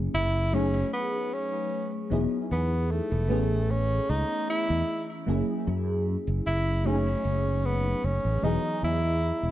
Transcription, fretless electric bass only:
0.14 F#1
2.11 E1
2.51 E2
3.12 E1
3.30 A1
4.09 C#2
4.70 E2
5.28 F#1
5.67 F#2
6.27 F#1
6.46 F#1
7.25 F#1
8.04 F#1
8.24 A1
8.43 E1
8.83 E2
9.43 E1

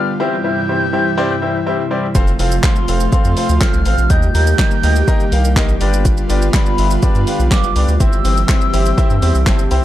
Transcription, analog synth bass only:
2.15 F1
2.39 F1
2.88 F1
3.13 F2
3.25 F2
3.49 D2
3.74 C2
3.86 A1
3.98 A#1
4.10 D#2
4.35 D#2
4.83 D2
5.32 C2
5.56 A#1
5.81 G1
6.30 G1
6.78 G1
7.03 G2
7.15 G2
7.39 B1
7.64 G1
7.76 C2
7.88 D2
8.00 G1
8.25 G1
8.74 G1
9.10 G2
9.23 E2
9.35 C2
9.46 G1
9.71 C2

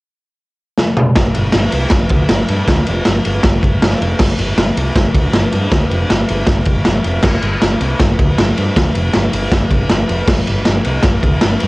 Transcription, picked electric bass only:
1.16 G1
1.36 G1
1.54 G1
1.73 C2
1.91 G1
2.11 D2
2.30 G1
2.49 G2
2.68 D2
2.88 F1
3.07 G1
3.26 G1
3.44 G1
3.63 G1
3.81 G1
4.01 F1
4.20 G1
4.39 G1
4.57 G1
4.77 C2
4.95 G1
5.14 D2
5.33 G1
5.53 G2
5.72 D2
5.91 F1
6.11 G1
6.30 G1
6.47 G1
6.66 G1
6.87 G1
7.06 F1
7.23 G1
7.43 G1
7.62 G1
7.81 C2
8.00 G1
8.19 D2
8.39 G1
8.58 G2
8.77 D2
8.96 F1
9.15 G1
9.33 G1
9.51 G1
9.71 G1
9.91 G1
10.09 F1
10.27 G1
10.48 G1
10.68 G1
10.86 C2
11.03 G1
11.23 D2
11.44 G1
11.63 G2

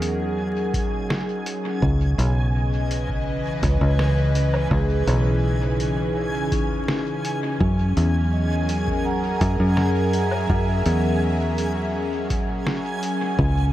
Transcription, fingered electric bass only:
Already playing: E2
0.92 A#2
1.82 C#2
2.18 B1
3.63 C#2
3.81 C#2
4.71 C#2
5.07 B1
6.70 E2
7.60 F#2
7.97 E2
9.41 F#2
9.60 F#2
10.49 F#2
10.86 E2
12.49 A#2
13.39 C#2

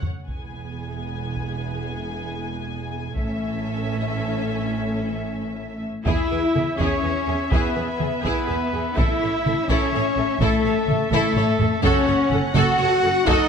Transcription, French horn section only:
0.27 G#3 E4
3.14 A3 C#4
6.05 E4
6.80 C#4
7.52 B3
8.25 B3
8.97 E4
9.68 C#4
10.40 A3
11.11 A3
11.82 C#4
12.56 F#4
13.26 D#4

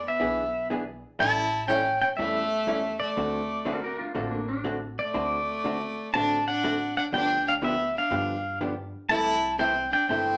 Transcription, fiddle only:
0.05 B3
1.19 E4
1.67 C#4
2.02 C#4
2.16 A3
3.01 A3
5.00 A3
6.12 D4
6.48 D4
6.98 D4
7.14 D4
7.47 D4
7.61 B3
7.96 D4
9.10 E4
9.58 C4
9.90 D4
10.08 C4

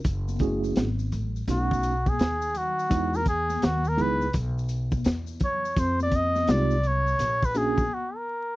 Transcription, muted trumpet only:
1.50 F#4
2.09 G#4
2.57 F#4
3.16 A#4
3.28 G#4
3.65 F#4
3.88 A#4
4.01 B4
5.44 C#5
5.79 C5
6.02 D5
6.15 D#5
6.51 D5
6.87 C#5
7.45 B4
7.57 G#4
7.94 F#4
8.16 A#4

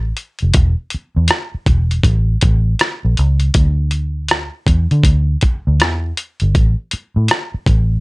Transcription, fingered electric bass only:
Already playing: A1
0.42 F1
0.56 E1
0.94 muted fingered electric bass stroke
1.16 E2
1.54 muted fingered electric bass stroke
1.68 E1
2.05 A1
2.44 A1
3.05 A#1
3.19 C#2
3.56 D2
4.68 E2
4.91 D3
5.05 D2
5.67 D2
5.82 E2
6.42 G1
6.56 A1
6.93 muted fingered electric bass stroke
7.16 A2
7.54 muted fingered electric bass stroke
7.68 A1

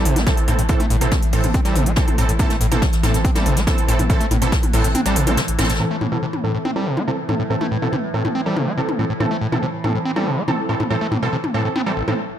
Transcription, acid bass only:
0.05 C3
0.16 A3
0.27 C3
0.48 A2
0.59 A2
0.69 A2
0.80 A3
0.90 A2
1.01 B2
1.12 C3
1.33 A2
1.44 A2
1.54 C4
1.65 G3
1.76 C3
1.86 A3
1.97 C3
2.18 A2
2.29 A2
2.39 A2
2.50 A3
2.61 A2
2.72 B2
2.82 C3
3.03 A2
3.14 A2
3.25 C4
3.35 G3
3.46 C3
3.57 A3
3.67 C3
3.88 A2
3.99 A2
4.10 A2
4.20 A3
4.31 A2
4.42 B2
4.52 C3
4.74 A2
4.84 A2
4.95 C4
5.06 G3
5.16 C3
5.27 A3
5.37 C3
5.59 A2
5.69 A2
5.80 A2
5.91 A3
6.01 A2
6.12 B2
6.23 C3
6.44 A2
6.55 A2
6.65 C4
6.76 G3
6.86 C3
6.97 A3
7.08 C3
7.29 A2
7.40 A2
7.50 A2
7.61 A3
7.71 A2
7.82 B2
7.93 C3
8.14 A2
8.25 A2
8.35 C4
8.46 G3
8.56 C3
8.67 A3
8.77 C3
8.99 A2
9.10 A2
9.20 A2
9.31 A3
9.41 A2
9.52 B2
9.63 C3
9.84 A2
9.95 A2
10.05 C4
10.16 G3
10.27 C3
10.37 A3
10.48 C3
10.69 A2
10.80 A2
10.90 A2
11.01 A3
11.12 A2
11.22 B2
11.33 C3
11.54 A2
11.65 A2
11.76 C4
11.86 G3
11.97 A1
12.08 A2

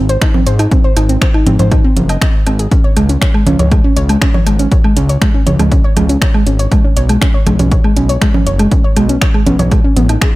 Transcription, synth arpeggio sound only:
0.09 C5
0.22 D#4
0.34 C4
0.47 C5
0.59 D#4
0.72 C4
0.84 C5
0.97 D#4
1.09 C4
1.22 C5
1.34 D#4
1.47 C4
1.59 C5
1.72 D#4
1.84 C4
2.09 D#5
2.22 D#5
2.47 C4
2.59 G#4
2.71 C#4
2.84 C#5
2.96 G#3
3.09 C#4
3.22 C#5
3.34 G#3
3.47 C#4
3.59 C#5
3.72 G#3
3.84 C#4
3.97 C#5
4.09 G#3
4.22 C#4
4.34 C#5
4.47 G#3
4.59 C#4
4.72 C#5
4.84 G#3
4.97 C#4
5.09 C#5
5.22 G#3
5.34 C#4
5.47 C#5
5.59 G#3
5.72 C#4
5.84 C#5
5.97 G#3
6.09 C#4
6.22 C#5
6.34 G#3
6.47 C#4
6.59 C#5
6.72 G#3
6.84 C#4
6.97 C#5
7.09 G#3
7.22 C#4
7.34 C#5
7.47 G#3
7.59 C#4
7.72 C#5
7.84 G#3
7.97 C#4
8.09 C#5
8.22 G#3
8.34 C#4
8.47 C#5
8.59 G#3
8.72 C#4
8.84 C#5
8.97 G#3
9.09 C#4
9.22 C#5
9.34 G#3
9.46 C#4
9.59 C#5
9.72 G#3
9.84 C#4
9.97 B3
10.09 D#4
10.22 G#4

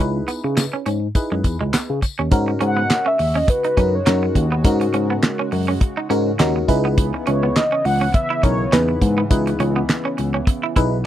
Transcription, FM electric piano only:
0.00 D#4 E4 G#4 B4
1.15 D#4 E4 G#4 B4
2.31 C#4 D#4 F#4 A#4
3.77 C#4 D#4 F#4 A#4
4.06 C#4 D#4 F#4 A#4
4.64 C#4 D#4 F#4 A#4
6.10 C#4 D#4 F#4 A#4
6.39 C#4 D#4 F#4 A#4
6.68 D#4 E4 G#4 B4
8.43 D#4 E4 G#4 A#4
8.72 D#4 E4 G#4 B4
9.30 D#4 E4 G#4 B4
10.76 D#4 E4 G#4 B4

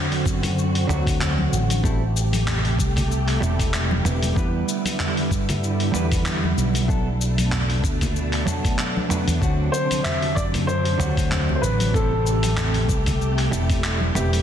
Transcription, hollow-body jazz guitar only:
Already playing: D3 F#3 A3 C4 F#4
0.87 D3 F#3 A3 C4 F#4
1.83 G3 A3 C4 E4 A4
3.40 G3 A3 C4 E4 A4
4.04 G3 A3 C4 E4 B4
4.34 G3 B3 D4 E4 B4
5.92 G3 B3 D4 E4 B4
6.88 F#3 A3 B3 D4 A4
8.45 F#3 A3 B3 D4 A4
9.09 F#3 A3 B3 D4 B4
9.39 D3 F#3 A3 C4 F#4
10.98 D3 F#3 A3 C4 F#4
11.94 G3 A3 C4 E4 A4
13.51 G3 A3 C4 E4 A4
14.15 G3 A3 C4 E4 B4

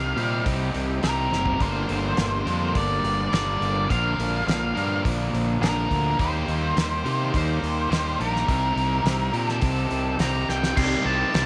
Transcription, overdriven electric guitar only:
Already playing: C3 G3 C4 D#4 G4
0.17 C3 G3 C4 D#4 G4
1.02 C3 G3 C4 D#4 G4
1.60 G2 D3 G3 A#3 D4 A#4
2.45 G2 D3 G3 A#3 D4 A#4
3.31 G2 D3 G3 A#3 D4 A#4
3.88 A#2 D3 F3 A#3 D4 A#4
4.75 A#2 D3 F3 A#3 D4 A#4
5.61 A#2 D3 F3 A#3 D4 A#4
6.18 D#3 G3 A#3 D#4 G4
7.04 D#3 G3 A#3 D#4 G4
7.90 D#3 G3 A#3 D#4 G4
8.47 C3 G3 C4 D#4 G4
9.33 C3 G3 C4 D#4 G4
10.19 C3 G3 C4 D#4 G4
10.76 C3 D#3 G3 C4 G4
11.05 C3 D#3 G3 C4 G4
11.33 C3 D#3 G3 C4 G4

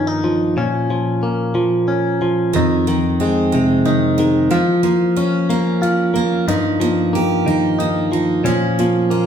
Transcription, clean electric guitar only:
Already playing: G2 D#3 F3 A#3
0.07 D#4
0.24 F3
0.57 A#2 C#4
0.90 F3
1.23 A#3
1.55 F3
1.88 C#4
2.22 F3
2.55 F2 D#4
2.88 D#3
3.21 G#3
3.54 C3
3.86 D#4
4.19 D#3
4.51 F3 F4
4.84 A#3
5.17 C#4
5.50 A#3
5.82 F4
6.14 A#3
6.48 G2 D#4
6.80 F3
7.13 A#3
7.46 D#3
7.79 D#4
8.12 F3
8.44 A#2 C#4
8.80 F3
9.10 A#3

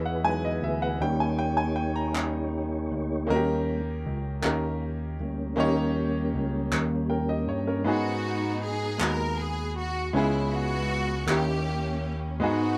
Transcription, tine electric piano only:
Already playing: E2
0.62 D2
1.00 D#2
2.91 D2
3.30 D#2
4.06 C#2
4.44 D#2
5.19 D2
5.58 D#2
6.34 C#2
6.72 D#2
7.47 G2
7.85 G#2
9.00 D#2
10.14 C#2
11.27 D#2
12.40 G#2

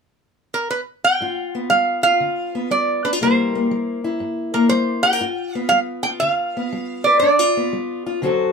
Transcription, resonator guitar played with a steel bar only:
0.54 A#4
0.71 B4
1.04 G5
1.70 F5
2.03 F5
2.71 D5
3.05 B4
3.23 C5
4.54 A#4
4.69 C5
5.03 G5
5.55 F5
5.69 F5
6.03 G5
6.20 F5
7.04 D5
7.19 D5

